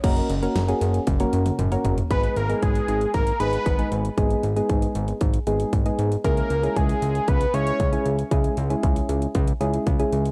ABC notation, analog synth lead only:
X:1
M:4/4
L:1/8
Q:1/4=116
K:G#m
V:1 name="Analog synth lead"
z8 | B A G2 A B2 z | z8 | A2 G2 B c2 z |
z8 |]